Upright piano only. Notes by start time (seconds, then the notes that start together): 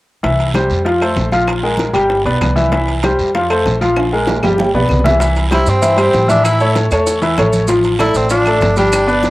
0.23 E3 E4 E5
0.54 G3 G4 C5
0.85 F3 F4 F5
1.01 A3 A4 C5
1.32 F3 F4 F5
1.63 G#3 G#4 A#4
1.93 G3 G4 G5
2.26 B3 B4 D5
2.56 E3 E4 E5
2.72 E3 E4 E5
3.04 G3 G4 C5
3.35 F3 F4 F5
3.50 A3 A4 C5
3.81 F3 F4 F5
4.13 G#3 G#4 A#4
4.43 G3 G4 G5
4.74 B3 B4 D5
5.04 E3 E4 E5
5.20 E3 E4 E5
5.51 G3 G4 C5
5.82 E3 E4 E5
5.96 G3 G4 C5
6.28 E3 E4 E5
6.60 A3 A4 C#5
6.92 A3 A4 C#5
7.22 E3 E4 E5
7.38 A3 A4 C#5
7.68 F3 F4 F5
7.98 A3 A4 D5
8.31 F3 F4 F5
8.46 A3 A4 D5
8.77 G3 G4 G5
9.07 B3 B4 D5